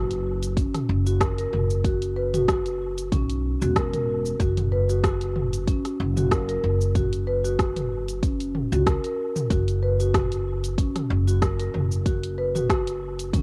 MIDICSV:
0, 0, Header, 1, 4, 480
1, 0, Start_track
1, 0, Tempo, 638298
1, 1389, Time_signature, 4, 2, 24, 8
1, 10095, End_track
2, 0, Start_track
2, 0, Title_t, "Marimba"
2, 0, Program_c, 0, 12
2, 432, Note_on_c, 0, 61, 82
2, 554, Note_off_c, 0, 61, 0
2, 801, Note_on_c, 0, 66, 77
2, 899, Note_off_c, 0, 66, 0
2, 910, Note_on_c, 0, 70, 82
2, 1027, Note_off_c, 0, 70, 0
2, 1041, Note_on_c, 0, 70, 79
2, 1103, Note_off_c, 0, 70, 0
2, 1389, Note_on_c, 0, 66, 82
2, 1513, Note_off_c, 0, 66, 0
2, 1628, Note_on_c, 0, 71, 72
2, 1746, Note_off_c, 0, 71, 0
2, 1760, Note_on_c, 0, 66, 84
2, 1858, Note_off_c, 0, 66, 0
2, 2348, Note_on_c, 0, 61, 76
2, 2472, Note_off_c, 0, 61, 0
2, 2720, Note_on_c, 0, 66, 71
2, 2818, Note_off_c, 0, 66, 0
2, 2829, Note_on_c, 0, 70, 77
2, 2947, Note_off_c, 0, 70, 0
2, 2960, Note_on_c, 0, 70, 78
2, 3022, Note_off_c, 0, 70, 0
2, 3308, Note_on_c, 0, 66, 84
2, 3432, Note_off_c, 0, 66, 0
2, 3550, Note_on_c, 0, 71, 76
2, 3667, Note_off_c, 0, 71, 0
2, 3680, Note_on_c, 0, 66, 83
2, 3778, Note_off_c, 0, 66, 0
2, 3790, Note_on_c, 0, 66, 85
2, 3864, Note_off_c, 0, 66, 0
2, 4270, Note_on_c, 0, 61, 83
2, 4394, Note_off_c, 0, 61, 0
2, 4639, Note_on_c, 0, 66, 76
2, 4738, Note_off_c, 0, 66, 0
2, 4749, Note_on_c, 0, 70, 81
2, 4866, Note_off_c, 0, 70, 0
2, 4878, Note_on_c, 0, 70, 82
2, 4941, Note_off_c, 0, 70, 0
2, 5228, Note_on_c, 0, 66, 84
2, 5352, Note_off_c, 0, 66, 0
2, 5468, Note_on_c, 0, 71, 77
2, 5586, Note_off_c, 0, 71, 0
2, 5599, Note_on_c, 0, 66, 81
2, 5698, Note_off_c, 0, 66, 0
2, 5708, Note_on_c, 0, 66, 89
2, 5783, Note_off_c, 0, 66, 0
2, 6189, Note_on_c, 0, 61, 80
2, 6313, Note_off_c, 0, 61, 0
2, 6560, Note_on_c, 0, 66, 75
2, 6658, Note_off_c, 0, 66, 0
2, 6670, Note_on_c, 0, 70, 81
2, 6787, Note_off_c, 0, 70, 0
2, 6802, Note_on_c, 0, 70, 73
2, 6863, Note_off_c, 0, 70, 0
2, 7150, Note_on_c, 0, 66, 81
2, 7273, Note_off_c, 0, 66, 0
2, 7389, Note_on_c, 0, 71, 74
2, 7506, Note_off_c, 0, 71, 0
2, 7520, Note_on_c, 0, 66, 78
2, 7618, Note_off_c, 0, 66, 0
2, 7630, Note_on_c, 0, 66, 81
2, 7704, Note_off_c, 0, 66, 0
2, 8109, Note_on_c, 0, 61, 85
2, 8233, Note_off_c, 0, 61, 0
2, 8479, Note_on_c, 0, 66, 76
2, 8578, Note_off_c, 0, 66, 0
2, 8589, Note_on_c, 0, 70, 84
2, 8706, Note_off_c, 0, 70, 0
2, 8719, Note_on_c, 0, 70, 82
2, 8782, Note_off_c, 0, 70, 0
2, 9070, Note_on_c, 0, 66, 83
2, 9193, Note_off_c, 0, 66, 0
2, 9310, Note_on_c, 0, 71, 78
2, 9427, Note_off_c, 0, 71, 0
2, 9439, Note_on_c, 0, 66, 79
2, 9538, Note_off_c, 0, 66, 0
2, 9549, Note_on_c, 0, 66, 89
2, 9623, Note_off_c, 0, 66, 0
2, 10029, Note_on_c, 0, 61, 85
2, 10095, Note_off_c, 0, 61, 0
2, 10095, End_track
3, 0, Start_track
3, 0, Title_t, "Upright bass"
3, 0, Program_c, 1, 32
3, 0, Note_on_c, 1, 30, 104
3, 492, Note_off_c, 1, 30, 0
3, 670, Note_on_c, 1, 30, 101
3, 1094, Note_off_c, 1, 30, 0
3, 1150, Note_on_c, 1, 30, 91
3, 2343, Note_off_c, 1, 30, 0
3, 2348, Note_on_c, 1, 35, 81
3, 2652, Note_off_c, 1, 35, 0
3, 2721, Note_on_c, 1, 28, 98
3, 3254, Note_off_c, 1, 28, 0
3, 3307, Note_on_c, 1, 30, 105
3, 4332, Note_off_c, 1, 30, 0
3, 4511, Note_on_c, 1, 30, 98
3, 4934, Note_off_c, 1, 30, 0
3, 4990, Note_on_c, 1, 30, 97
3, 6493, Note_off_c, 1, 30, 0
3, 6559, Note_on_c, 1, 37, 102
3, 6716, Note_off_c, 1, 37, 0
3, 7147, Note_on_c, 1, 30, 108
3, 8172, Note_off_c, 1, 30, 0
3, 8349, Note_on_c, 1, 30, 105
3, 8773, Note_off_c, 1, 30, 0
3, 8829, Note_on_c, 1, 30, 90
3, 10095, Note_off_c, 1, 30, 0
3, 10095, End_track
4, 0, Start_track
4, 0, Title_t, "Drums"
4, 80, Note_on_c, 9, 42, 43
4, 81, Note_on_c, 9, 69, 35
4, 156, Note_off_c, 9, 42, 0
4, 157, Note_off_c, 9, 69, 0
4, 321, Note_on_c, 9, 42, 34
4, 322, Note_on_c, 9, 69, 75
4, 396, Note_off_c, 9, 42, 0
4, 397, Note_off_c, 9, 69, 0
4, 427, Note_on_c, 9, 36, 114
4, 430, Note_on_c, 9, 42, 66
4, 431, Note_on_c, 9, 69, 59
4, 502, Note_off_c, 9, 36, 0
4, 505, Note_off_c, 9, 42, 0
4, 506, Note_off_c, 9, 69, 0
4, 560, Note_on_c, 9, 37, 34
4, 560, Note_on_c, 9, 42, 46
4, 560, Note_on_c, 9, 45, 85
4, 561, Note_on_c, 9, 69, 38
4, 635, Note_off_c, 9, 37, 0
4, 635, Note_off_c, 9, 42, 0
4, 635, Note_off_c, 9, 45, 0
4, 636, Note_off_c, 9, 69, 0
4, 801, Note_on_c, 9, 69, 74
4, 876, Note_off_c, 9, 69, 0
4, 907, Note_on_c, 9, 36, 106
4, 910, Note_on_c, 9, 37, 101
4, 910, Note_on_c, 9, 42, 68
4, 911, Note_on_c, 9, 69, 58
4, 982, Note_off_c, 9, 36, 0
4, 985, Note_off_c, 9, 37, 0
4, 985, Note_off_c, 9, 42, 0
4, 986, Note_off_c, 9, 69, 0
4, 1041, Note_on_c, 9, 42, 43
4, 1042, Note_on_c, 9, 69, 31
4, 1116, Note_off_c, 9, 42, 0
4, 1117, Note_off_c, 9, 69, 0
4, 1149, Note_on_c, 9, 45, 71
4, 1224, Note_off_c, 9, 45, 0
4, 1280, Note_on_c, 9, 69, 67
4, 1355, Note_off_c, 9, 69, 0
4, 1387, Note_on_c, 9, 36, 111
4, 1388, Note_on_c, 9, 42, 63
4, 1390, Note_on_c, 9, 69, 55
4, 1462, Note_off_c, 9, 36, 0
4, 1464, Note_off_c, 9, 42, 0
4, 1465, Note_off_c, 9, 69, 0
4, 1519, Note_on_c, 9, 42, 43
4, 1520, Note_on_c, 9, 69, 37
4, 1595, Note_off_c, 9, 42, 0
4, 1596, Note_off_c, 9, 69, 0
4, 1759, Note_on_c, 9, 42, 27
4, 1759, Note_on_c, 9, 45, 75
4, 1761, Note_on_c, 9, 69, 70
4, 1835, Note_off_c, 9, 42, 0
4, 1835, Note_off_c, 9, 45, 0
4, 1836, Note_off_c, 9, 69, 0
4, 1867, Note_on_c, 9, 36, 109
4, 1868, Note_on_c, 9, 37, 100
4, 1868, Note_on_c, 9, 42, 61
4, 1869, Note_on_c, 9, 69, 60
4, 1942, Note_off_c, 9, 36, 0
4, 1943, Note_off_c, 9, 37, 0
4, 1943, Note_off_c, 9, 42, 0
4, 1944, Note_off_c, 9, 69, 0
4, 1999, Note_on_c, 9, 42, 44
4, 2000, Note_on_c, 9, 69, 36
4, 2074, Note_off_c, 9, 42, 0
4, 2075, Note_off_c, 9, 69, 0
4, 2240, Note_on_c, 9, 42, 31
4, 2241, Note_on_c, 9, 69, 77
4, 2315, Note_off_c, 9, 42, 0
4, 2316, Note_off_c, 9, 69, 0
4, 2347, Note_on_c, 9, 36, 112
4, 2348, Note_on_c, 9, 42, 66
4, 2348, Note_on_c, 9, 45, 78
4, 2350, Note_on_c, 9, 69, 58
4, 2422, Note_off_c, 9, 36, 0
4, 2424, Note_off_c, 9, 42, 0
4, 2424, Note_off_c, 9, 45, 0
4, 2425, Note_off_c, 9, 69, 0
4, 2479, Note_on_c, 9, 42, 45
4, 2480, Note_on_c, 9, 69, 39
4, 2554, Note_off_c, 9, 42, 0
4, 2555, Note_off_c, 9, 69, 0
4, 2720, Note_on_c, 9, 69, 70
4, 2795, Note_off_c, 9, 69, 0
4, 2827, Note_on_c, 9, 36, 112
4, 2828, Note_on_c, 9, 37, 105
4, 2828, Note_on_c, 9, 42, 70
4, 2829, Note_on_c, 9, 69, 57
4, 2902, Note_off_c, 9, 36, 0
4, 2903, Note_off_c, 9, 37, 0
4, 2903, Note_off_c, 9, 42, 0
4, 2904, Note_off_c, 9, 69, 0
4, 2959, Note_on_c, 9, 42, 41
4, 2959, Note_on_c, 9, 45, 74
4, 2960, Note_on_c, 9, 69, 35
4, 3034, Note_off_c, 9, 42, 0
4, 3034, Note_off_c, 9, 45, 0
4, 3035, Note_off_c, 9, 69, 0
4, 3199, Note_on_c, 9, 69, 65
4, 3275, Note_off_c, 9, 69, 0
4, 3307, Note_on_c, 9, 36, 107
4, 3308, Note_on_c, 9, 42, 56
4, 3309, Note_on_c, 9, 69, 54
4, 3382, Note_off_c, 9, 36, 0
4, 3383, Note_off_c, 9, 42, 0
4, 3385, Note_off_c, 9, 69, 0
4, 3439, Note_on_c, 9, 42, 45
4, 3439, Note_on_c, 9, 45, 80
4, 3440, Note_on_c, 9, 69, 34
4, 3514, Note_off_c, 9, 42, 0
4, 3514, Note_off_c, 9, 45, 0
4, 3515, Note_off_c, 9, 69, 0
4, 3679, Note_on_c, 9, 69, 65
4, 3755, Note_off_c, 9, 69, 0
4, 3787, Note_on_c, 9, 36, 105
4, 3789, Note_on_c, 9, 37, 100
4, 3789, Note_on_c, 9, 42, 63
4, 3790, Note_on_c, 9, 69, 59
4, 3862, Note_off_c, 9, 36, 0
4, 3864, Note_off_c, 9, 37, 0
4, 3864, Note_off_c, 9, 42, 0
4, 3865, Note_off_c, 9, 69, 0
4, 3919, Note_on_c, 9, 42, 43
4, 3920, Note_on_c, 9, 69, 35
4, 3994, Note_off_c, 9, 42, 0
4, 3995, Note_off_c, 9, 69, 0
4, 4028, Note_on_c, 9, 45, 83
4, 4104, Note_off_c, 9, 45, 0
4, 4160, Note_on_c, 9, 42, 33
4, 4161, Note_on_c, 9, 69, 68
4, 4235, Note_off_c, 9, 42, 0
4, 4236, Note_off_c, 9, 69, 0
4, 4267, Note_on_c, 9, 36, 108
4, 4268, Note_on_c, 9, 42, 68
4, 4269, Note_on_c, 9, 69, 62
4, 4342, Note_off_c, 9, 36, 0
4, 4343, Note_off_c, 9, 42, 0
4, 4345, Note_off_c, 9, 69, 0
4, 4399, Note_on_c, 9, 37, 34
4, 4399, Note_on_c, 9, 42, 44
4, 4400, Note_on_c, 9, 69, 35
4, 4474, Note_off_c, 9, 37, 0
4, 4474, Note_off_c, 9, 42, 0
4, 4475, Note_off_c, 9, 69, 0
4, 4638, Note_on_c, 9, 45, 84
4, 4639, Note_on_c, 9, 69, 69
4, 4713, Note_off_c, 9, 45, 0
4, 4715, Note_off_c, 9, 69, 0
4, 4747, Note_on_c, 9, 36, 103
4, 4749, Note_on_c, 9, 37, 99
4, 4749, Note_on_c, 9, 42, 69
4, 4750, Note_on_c, 9, 69, 56
4, 4822, Note_off_c, 9, 36, 0
4, 4824, Note_off_c, 9, 37, 0
4, 4824, Note_off_c, 9, 42, 0
4, 4825, Note_off_c, 9, 69, 0
4, 4879, Note_on_c, 9, 42, 41
4, 4880, Note_on_c, 9, 69, 32
4, 4954, Note_off_c, 9, 42, 0
4, 4955, Note_off_c, 9, 69, 0
4, 5121, Note_on_c, 9, 69, 61
4, 5196, Note_off_c, 9, 69, 0
4, 5228, Note_on_c, 9, 36, 102
4, 5228, Note_on_c, 9, 42, 61
4, 5228, Note_on_c, 9, 45, 77
4, 5229, Note_on_c, 9, 69, 52
4, 5303, Note_off_c, 9, 36, 0
4, 5303, Note_off_c, 9, 42, 0
4, 5303, Note_off_c, 9, 45, 0
4, 5305, Note_off_c, 9, 69, 0
4, 5360, Note_on_c, 9, 42, 47
4, 5361, Note_on_c, 9, 69, 32
4, 5435, Note_off_c, 9, 42, 0
4, 5436, Note_off_c, 9, 69, 0
4, 5600, Note_on_c, 9, 69, 64
4, 5676, Note_off_c, 9, 69, 0
4, 5708, Note_on_c, 9, 36, 105
4, 5709, Note_on_c, 9, 37, 94
4, 5709, Note_on_c, 9, 42, 63
4, 5710, Note_on_c, 9, 69, 53
4, 5783, Note_off_c, 9, 36, 0
4, 5784, Note_off_c, 9, 37, 0
4, 5784, Note_off_c, 9, 42, 0
4, 5785, Note_off_c, 9, 69, 0
4, 5839, Note_on_c, 9, 42, 48
4, 5839, Note_on_c, 9, 45, 84
4, 5840, Note_on_c, 9, 69, 33
4, 5914, Note_off_c, 9, 42, 0
4, 5914, Note_off_c, 9, 45, 0
4, 5915, Note_off_c, 9, 69, 0
4, 6080, Note_on_c, 9, 42, 33
4, 6081, Note_on_c, 9, 69, 69
4, 6155, Note_off_c, 9, 42, 0
4, 6156, Note_off_c, 9, 69, 0
4, 6188, Note_on_c, 9, 36, 111
4, 6189, Note_on_c, 9, 42, 69
4, 6190, Note_on_c, 9, 69, 57
4, 6263, Note_off_c, 9, 36, 0
4, 6264, Note_off_c, 9, 42, 0
4, 6265, Note_off_c, 9, 69, 0
4, 6320, Note_on_c, 9, 42, 47
4, 6321, Note_on_c, 9, 69, 35
4, 6395, Note_off_c, 9, 42, 0
4, 6396, Note_off_c, 9, 69, 0
4, 6428, Note_on_c, 9, 45, 84
4, 6504, Note_off_c, 9, 45, 0
4, 6560, Note_on_c, 9, 69, 66
4, 6636, Note_off_c, 9, 69, 0
4, 6667, Note_on_c, 9, 36, 110
4, 6668, Note_on_c, 9, 37, 102
4, 6668, Note_on_c, 9, 42, 68
4, 6669, Note_on_c, 9, 69, 57
4, 6743, Note_off_c, 9, 36, 0
4, 6743, Note_off_c, 9, 37, 0
4, 6743, Note_off_c, 9, 42, 0
4, 6744, Note_off_c, 9, 69, 0
4, 6799, Note_on_c, 9, 42, 44
4, 6801, Note_on_c, 9, 69, 32
4, 6875, Note_off_c, 9, 42, 0
4, 6876, Note_off_c, 9, 69, 0
4, 7039, Note_on_c, 9, 45, 83
4, 7040, Note_on_c, 9, 69, 67
4, 7114, Note_off_c, 9, 45, 0
4, 7115, Note_off_c, 9, 69, 0
4, 7147, Note_on_c, 9, 36, 108
4, 7149, Note_on_c, 9, 42, 67
4, 7150, Note_on_c, 9, 69, 51
4, 7222, Note_off_c, 9, 36, 0
4, 7224, Note_off_c, 9, 42, 0
4, 7225, Note_off_c, 9, 69, 0
4, 7280, Note_on_c, 9, 42, 47
4, 7281, Note_on_c, 9, 69, 34
4, 7355, Note_off_c, 9, 42, 0
4, 7356, Note_off_c, 9, 69, 0
4, 7520, Note_on_c, 9, 69, 66
4, 7595, Note_off_c, 9, 69, 0
4, 7627, Note_on_c, 9, 36, 110
4, 7629, Note_on_c, 9, 37, 101
4, 7629, Note_on_c, 9, 42, 68
4, 7629, Note_on_c, 9, 45, 79
4, 7630, Note_on_c, 9, 69, 52
4, 7703, Note_off_c, 9, 36, 0
4, 7704, Note_off_c, 9, 37, 0
4, 7704, Note_off_c, 9, 42, 0
4, 7704, Note_off_c, 9, 45, 0
4, 7705, Note_off_c, 9, 69, 0
4, 7760, Note_on_c, 9, 42, 48
4, 7761, Note_on_c, 9, 69, 32
4, 7835, Note_off_c, 9, 42, 0
4, 7836, Note_off_c, 9, 69, 0
4, 8001, Note_on_c, 9, 42, 33
4, 8002, Note_on_c, 9, 69, 70
4, 8076, Note_off_c, 9, 42, 0
4, 8077, Note_off_c, 9, 69, 0
4, 8107, Note_on_c, 9, 36, 102
4, 8110, Note_on_c, 9, 42, 73
4, 8111, Note_on_c, 9, 69, 57
4, 8183, Note_off_c, 9, 36, 0
4, 8185, Note_off_c, 9, 42, 0
4, 8186, Note_off_c, 9, 69, 0
4, 8240, Note_on_c, 9, 37, 32
4, 8240, Note_on_c, 9, 42, 52
4, 8240, Note_on_c, 9, 45, 88
4, 8241, Note_on_c, 9, 69, 33
4, 8315, Note_off_c, 9, 37, 0
4, 8315, Note_off_c, 9, 42, 0
4, 8315, Note_off_c, 9, 45, 0
4, 8316, Note_off_c, 9, 69, 0
4, 8481, Note_on_c, 9, 69, 69
4, 8556, Note_off_c, 9, 69, 0
4, 8588, Note_on_c, 9, 36, 100
4, 8588, Note_on_c, 9, 37, 96
4, 8588, Note_on_c, 9, 42, 73
4, 8590, Note_on_c, 9, 69, 54
4, 8663, Note_off_c, 9, 36, 0
4, 8664, Note_off_c, 9, 37, 0
4, 8664, Note_off_c, 9, 42, 0
4, 8665, Note_off_c, 9, 69, 0
4, 8719, Note_on_c, 9, 42, 45
4, 8720, Note_on_c, 9, 69, 29
4, 8794, Note_off_c, 9, 42, 0
4, 8796, Note_off_c, 9, 69, 0
4, 8829, Note_on_c, 9, 45, 85
4, 8904, Note_off_c, 9, 45, 0
4, 8961, Note_on_c, 9, 69, 64
4, 9036, Note_off_c, 9, 69, 0
4, 9068, Note_on_c, 9, 36, 103
4, 9069, Note_on_c, 9, 42, 67
4, 9070, Note_on_c, 9, 69, 51
4, 9143, Note_off_c, 9, 36, 0
4, 9144, Note_off_c, 9, 42, 0
4, 9145, Note_off_c, 9, 69, 0
4, 9200, Note_on_c, 9, 42, 51
4, 9201, Note_on_c, 9, 69, 32
4, 9276, Note_off_c, 9, 42, 0
4, 9277, Note_off_c, 9, 69, 0
4, 9441, Note_on_c, 9, 45, 84
4, 9442, Note_on_c, 9, 69, 64
4, 9516, Note_off_c, 9, 45, 0
4, 9517, Note_off_c, 9, 69, 0
4, 9547, Note_on_c, 9, 36, 105
4, 9550, Note_on_c, 9, 37, 101
4, 9550, Note_on_c, 9, 42, 70
4, 9551, Note_on_c, 9, 69, 51
4, 9623, Note_off_c, 9, 36, 0
4, 9626, Note_off_c, 9, 37, 0
4, 9626, Note_off_c, 9, 42, 0
4, 9627, Note_off_c, 9, 69, 0
4, 9680, Note_on_c, 9, 42, 49
4, 9682, Note_on_c, 9, 69, 34
4, 9756, Note_off_c, 9, 42, 0
4, 9757, Note_off_c, 9, 69, 0
4, 9921, Note_on_c, 9, 42, 34
4, 9922, Note_on_c, 9, 69, 69
4, 9996, Note_off_c, 9, 42, 0
4, 9997, Note_off_c, 9, 69, 0
4, 10027, Note_on_c, 9, 36, 107
4, 10029, Note_on_c, 9, 42, 72
4, 10029, Note_on_c, 9, 45, 90
4, 10031, Note_on_c, 9, 69, 56
4, 10095, Note_off_c, 9, 36, 0
4, 10095, Note_off_c, 9, 42, 0
4, 10095, Note_off_c, 9, 45, 0
4, 10095, Note_off_c, 9, 69, 0
4, 10095, End_track
0, 0, End_of_file